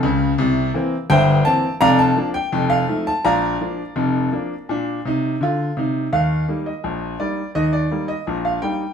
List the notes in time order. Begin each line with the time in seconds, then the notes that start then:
0.03 C#2 C#3
0.38 C2 C3
0.74 E3 A#3 C4
1.10 G1 G2 C5 E5 G5
1.45 E3 A#3 C4 A5
1.81 F1 F2 D5 F5 A#5
1.99 A5
2.16 F3 A#3 D4
2.34 G5
2.52 F1 F2
2.70 F5
2.88 F3 A3 D#4
3.07 A5
3.24 A#1 A#2 D5 F5 A#5
3.61 F3 A#3 D4
3.96 F1 F2
4.32 F3 A#3 D4
4.69 A#2 D4
5.05 C3 D#4
5.41 D3 F4
5.77 C3 D#4
6.13 D#2 D#3 F5
6.48 G3 A#3 D#4
6.66 D#5
6.84 A#1 A#2
7.20 G3 A#3 D#4 D5
7.55 D#2 D#3 D#5
7.73 D5
7.91 G3 A#3 D#4
8.08 D#5
8.27 A#1 A#2
8.45 F5
8.62 G3 A#3 D#4 G5